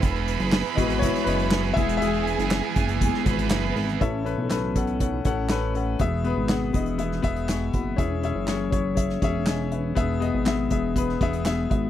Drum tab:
HH |xxxx-xxxxxxx-xxx|xxxx--xxx-xx--ox|x-x-x-xxx-x-x-x-|x-x-x-xxx-xxx-x-|
CP |----x-------x---|----x-------x---|----x-------x---|----x-------x---|
SD |----o----o--o---|----o----o--o---|----o-------o---|----o----o--o---|
BD |o-----o-o-----o-|------o-o-o-----|o-----o-o-o-----|o-----o---o---o-|

HH |x-x-x-x-x-x-x-x-|x-x-x-x-x-xxx-x-|
CP |----x-------x---|----x-------x---|
SD |----o----o--o---|----o----o--o---|
BD |o-----o-o-o-----|o-----o-o-o---o-|